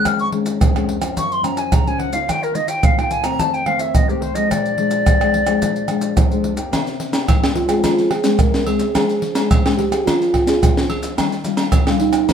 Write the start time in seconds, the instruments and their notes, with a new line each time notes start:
Already playing: nylon-string guitar D#3 G#3 C#4
0.05 nylon-string guitar F2, flute F6, pandeiro, tamborim, maracas, surdo
0.19 flute C#6, pandeiro, maracas
0.31 nylon-string guitar D#3 G#3 C#4, pandeiro
0.46 pandeiro, maracas
0.60 nylon-string guitar F2, pandeiro, tamborim, maracas, surdo
0.74 nylon-string guitar D#3 G#3 C#4, pandeiro, tamborim, maracas
0.89 pandeiro
1.01 nylon-string guitar F3 A#3 C#4, pandeiro, tamborim, maracas
1.16 nylon-string guitar F#2, flute C#6, pandeiro, maracas, surdo
1.32 flute C6, pandeiro, maracas
1.43 nylon-string guitar F3 A#3 C#4, flute A#5, pandeiro, tamborim, maracas
1.57 flute G#5, pandeiro, maracas
1.72 nylon-string guitar C#3, flute A#5, pandeiro, tamborim, maracas, surdo
1.86 nylon-string guitar F3 A#3 C#4, flute G#5, pandeiro, maracas
1.99 flute F#5, pandeiro
2.12 nylon-string guitar A#3 D#4 F4, flute F5, pandeiro, maracas
2.28 nylon-string guitar D#3, flute G5, pandeiro, tamborim, maracas, surdo
2.42 flute A#4, pandeiro, maracas
2.54 nylon-string guitar A#3 D#4 F4, flute D#5, pandeiro, maracas
2.68 flute G5, pandeiro, maracas
2.83 nylon-string guitar A#2, flute F5, pandeiro, tamborim, maracas, surdo
2.97 nylon-string guitar A#3 D#4 F4, flute G5, pandeiro, tamborim, maracas
3.11 flute G#5, pandeiro, maracas
3.23 nylon-string guitar D#3 A3 C4, flute A#5, pandeiro, tamborim, maracas
3.39 nylon-string guitar F2, flute A5, pandeiro, maracas, surdo
3.53 flute G5, pandeiro, maracas
3.66 nylon-string guitar D#3 A3 C4, flute F5, pandeiro, tamborim
3.79 flute E5, pandeiro, maracas
3.94 nylon-string guitar C3, flute D#5, pandeiro, tamborim, maracas, surdo
4.08 nylon-string guitar D#3 A3 C4, flute G4, pandeiro, maracas
4.21 flute C5, pandeiro
4.34 nylon-string guitar F3 G#3 D4, flute D#5, pandeiro, maracas
4.50 nylon-string guitar A#2, flute D5, pandeiro, tamborim, maracas, surdo
4.66 pandeiro, maracas
4.76 nylon-string guitar F3 G#3 D4, pandeiro
4.91 pandeiro, maracas
5.06 nylon-string guitar F2, pandeiro, tamborim, maracas, surdo
5.21 nylon-string guitar F3 G#3 D4, pandeiro, tamborim, maracas
5.34 pandeiro
5.46 nylon-string guitar F3 G#3 D4, pandeiro, tamborim, maracas
5.61 nylon-string guitar A#2, pandeiro, maracas, surdo
5.76 pandeiro, maracas
5.88 nylon-string guitar F3 G#3 D4, pandeiro, tamborim, maracas
6.01 pandeiro, maracas
6.16 nylon-string guitar F2, pandeiro, tamborim, maracas, surdo
6.30 nylon-string guitar F3 G#3 D4, pandeiro, maracas
6.44 pandeiro
6.56 nylon-string guitar A#3 D#4 G4, pandeiro, maracas
6.71 nylon-string guitar C3, snare, pandeiro, tamborim, low agogo, maracas, surdo
6.87 snare, pandeiro, maracas
7.00 snare, pandeiro
7.12 nylon-string guitar A#3 D#4 G4, snare, pandeiro, low agogo, maracas
7.28 nylon-string guitar G2, snare, pandeiro, tamborim, high agogo, maracas, surdo
7.42 nylon-string guitar A#3 D#4 G4, snare, pandeiro, tamborim, maracas
7.55 soft synth lead F4, snare, pandeiro
7.67 nylon-string guitar G#3 C4 G#4, snare, pandeiro, tamborim, maracas
7.83 nylon-string guitar F3, snare, pandeiro, low agogo, maracas, surdo
7.98 snare, pandeiro, maracas
8.11 soft synth lead G#4, snare, pandeiro, tamborim
8.23 nylon-string guitar G#3 C4 G#4, snare, pandeiro, maracas
8.39 nylon-string guitar C3, soft synth lead A#4, snare, pandeiro, tamborim, maracas, surdo
8.54 snare, pandeiro, maracas
8.66 nylon-string guitar G#3 C4 G#4, soft synth lead G#4, snare, pandeiro, high agogo
8.79 snare, pandeiro, maracas
8.94 nylon-string guitar F3 G#3 D4 G#4, snare, pandeiro, tamborim, low agogo, maracas, surdo
9.09 snare, pandeiro, maracas
9.22 snare, pandeiro
9.35 nylon-string guitar G#3 D4 G#4, snare, pandeiro, low agogo, maracas
9.50 nylon-string guitar F3, snare, pandeiro, tamborim, high agogo, maracas, surdo
9.65 nylon-string guitar G#3 D4 G#4, snare, pandeiro, tamborim, maracas
9.77 soft synth lead G4, snare, pandeiro
9.90 nylon-string guitar A#3 D4 G#4, snare, pandeiro, tamborim, maracas
10.05 nylon-string guitar F3, soft synth lead F4, snare, pandeiro, low agogo, maracas, surdo
10.22 snare, pandeiro, maracas
10.34 snare, pandeiro, tamborim, surdo
10.46 nylon-string guitar A#3 D4 G#4, snare, pandeiro, maracas
10.61 nylon-string guitar F3, snare, pandeiro, tamborim, maracas, surdo
10.77 snare, pandeiro, maracas
10.88 nylon-string guitar A#3 D4 G#4, snare, pandeiro, high agogo
11.03 snare, pandeiro, maracas
11.16 nylon-string guitar D#3 G3 A#3 F4, snare, pandeiro, tamborim, low agogo, maracas, surdo
11.32 snare, pandeiro, maracas
11.44 nylon-string guitar G3 A#3 F4, snare, pandeiro, maracas
11.57 snare, pandeiro, low agogo, maracas
11.72 nylon-string guitar A#2, snare, pandeiro, tamborim, high agogo, maracas, surdo
11.87 nylon-string guitar G3 A#3 F4, snare, pandeiro, tamborim, maracas
11.99 soft synth lead D#4, snare, pandeiro
12.13 snare, pandeiro, tamborim, maracas
12.28 nylon-string guitar F2 F3 A3 C4, snare, pandeiro, low agogo, maracas, surdo